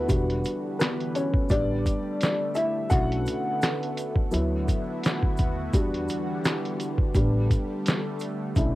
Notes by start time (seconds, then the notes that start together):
Already playing: D#2 F#3 A3 B3 E4 F#4 A4 B4
0.08 E1 D3 E3 G3 D4 F#4, kick, closed hi-hat, shaker
0.30 closed hi-hat
0.44 closed hi-hat, shaker
0.79 B3 B4, snare, clap, closed hi-hat, shaker
1.00 closed hi-hat
1.15 C#4 C#5, closed hi-hat, shaker
1.34 kick
1.49 A1 G3 A3 B3 D4 D5, kick, closed hi-hat, shaker
1.86 kick, closed hi-hat, shaker
2.21 snare, clap, closed hi-hat, shaker
2.55 E4 E5, closed hi-hat, shaker
2.90 B1 D3 A3 B3 C#4 D4 E4 F#4 F#5, kick, closed hi-hat, shaker
3.12 closed hi-hat
3.26 closed hi-hat, shaker
3.62 snare, clap, closed hi-hat, shaker
3.83 closed hi-hat
3.97 closed hi-hat, shaker
4.16 kick
4.31 D2 D3 F#3 B3 E4 F#4, closed hi-hat, shaker
4.68 kick, closed hi-hat, shaker
5.03 snare, clap, closed hi-hat, shaker
5.23 kick
5.37 D#2, kick, closed hi-hat, shaker
5.73 E2 D3 E3 G3 D4 F#4, kick, closed hi-hat, shaker
5.94 closed hi-hat
6.08 closed hi-hat, shaker
6.45 snare, clap, closed hi-hat, shaker
6.65 closed hi-hat
6.80 closed hi-hat, shaker
6.98 kick
7.14 A1 G3 A3 B3 D4, kick, closed hi-hat, shaker
7.51 kick, closed hi-hat, shaker
7.86 snare, clap, closed hi-hat, shaker
8.20 closed hi-hat, shaker
8.55 B1 A3 B3 C#4 D4 E4, kick, closed hi-hat, shaker